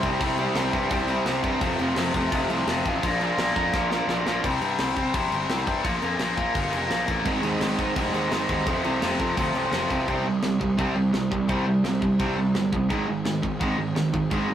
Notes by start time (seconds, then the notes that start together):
0.03 C2 C3 G3 C4 E4, kick, crash
0.20 C2 C3 G3 C4 E4, kick, crash
0.38 C3 G3 C4 E4, crash
0.55 C2 C3 G3 C4 E4, snare, crash
0.73 G2 C3 G3 C4 E4, kick, crash
0.90 C2 C3 G3 C4 E4, kick, crash
1.07 C3 G3 C4 E4, crash
1.25 C2 C3 G3 C4 E4, snare, crash
1.43 G2 C3 G3 C4 E4, kick, crash
1.61 F1 F2 C3 F3 A3 C4 F4, kick, crash
1.78 F1 F2 C3 F3 A3 C4 F4, crash
1.96 F1 F2 C3 F3 A3 C4 F4, snare, crash
2.14 F1 F2 C3 F3 A3 C4 F4, kick, crash
2.32 F1 F2 C3 F3 A3 C4 F4, kick, crash
2.49 C2 F2 C3 F3 A3 C4 F4, crash
2.67 F1 F2 C3 F3 A3 C4 F4, snare, crash
2.84 A1 F2 C3 F3 A3 C4 F4, kick, crash
3.02 A#1 A#2 F3 A#3 D4 F4, kick, crash
3.20 A#2 F3 A#3 D4 F4, crash
3.38 A#1 A#2 F3 A#3 D4 F4, snare, crash
3.55 F2 A#2 F3 A#3 D4 F4, kick, crash
3.73 A#1 A#2 F3 A#3 D4 F4, kick, snare
3.90 A#2 F3 A#3 D4 F4, snare
4.08 A#1 A#2 F3 A#3 D4 F4, snare
4.26 A#1 A#2 F3 A#3 D4 F4, snare
4.44 C2 C3 G3 C4, kick, crash
4.61 G2 C3 G3 C4, crash
4.78 C2 C3 G3 C4, snare, crash
4.96 C3 G3 C4, kick, crash
5.14 A#1 C3 G3 C4, kick, crash
5.31 G1 C3 G3 C4, crash
5.49 C2 C3 G3 C4, snare, crash
5.66 G2 C3 G3 C4, kick, crash
5.83 A#1 A#2 F3 A#3, kick, crash
6.02 F2 A#2 F3 A#3, crash
6.19 A#1 A#2 F3 A#3, snare, crash
6.36 A#2 F3 A#3, kick, crash
6.54 G1 A#2 F3 A#3, kick, crash
6.71 F1 A#2 F3 A#3, crash
6.89 A#1 A#2 F3 A#3, snare, crash
7.07 A1 A#2 F3 A#3, kick, crash
7.24 G#1 G#2 D#3 G#3 C4 D#4 G#4 C5, kick, crash
7.41 D#2 G#2 D#3 G#3 C4 D#4 G#4 C5, crash
7.59 G#1 G#2 D#3 G#3 C4 D#4 G#4 C5, snare, crash
7.77 G#2 D#3 G#3 C4 D#4 G#4 C5, kick, crash
7.95 F1 G#2 D#3 G#3 C4 D#4 G#4 C5, kick, crash
8.12 D#2 G#2 D#3 G#3 C4 D#4 G#4 C5, crash
8.30 G#1 G#2 D#3 G#3 C4 D#4 G#4 C5, snare, crash
8.48 D#2 G#2 D#3 G#3 C4 D#4 G#4 C5, kick, crash
8.66 F1 F2 C3 F3 C4 F4 A4 C5, kick, crash
8.83 C2 F2 C3 F3 C4 F4 A4 C5, crash
9.01 F1 F2 C3 F3 C4 F4 A4 C5, snare, crash
9.19 F2 C3 F3 C4 F4 A4 C5, kick, crash
9.36 D2 F2 C3 F3 C4 F4 A4 C5, kick, crash
9.54 C2 F2 C3 F3 C4 F4 A4 C5, crash
9.72 F1 F2 C3 F3 C4 F4 A4 C5, snare, crash
9.90 C2 F2 C3 F3 C4 F4 A4 C5, kick, crash
10.08 C2 C3 G3 C4, kick, crash
10.25 C2 C3 G3
10.42 C2 C3 G3, snare, crash
10.59 C2 C3 G3, kick
10.77 C2 C3 G3 C4, kick, crash
10.95 C2 C3 G3
11.13 C2 C3 G3, snare, crash
11.31 C2 C3 G3, kick
11.48 C2 C3 G3 C4, kick, crash
11.66 C3 G3
11.83 C2 C3 G3, snare, crash
12.01 C2 C3 G3, kick
12.19 C2 C3 G3 C4, kick, crash
12.36 C2 C3 G3
12.54 G1 C3 G3, snare, crash
12.72 C2 C3 G3, kick
12.89 G#1 G#2 D#3 G#3, kick, crash
13.07 G#1 G#2 D#3
13.25 G#1 G#2 D#3, snare, crash
13.42 G#1 G#2 D#3, kick
13.60 G#1 G#2 D#3 G#3, kick, crash
13.77 G#1 G#2 D#3
13.95 G#1 G#2 D#3, snare, crash
14.13 G#1 G#2 D#3, kick
14.31 G#1 G#2 D#3 G#3, kick, crash
14.49 G#2 D#3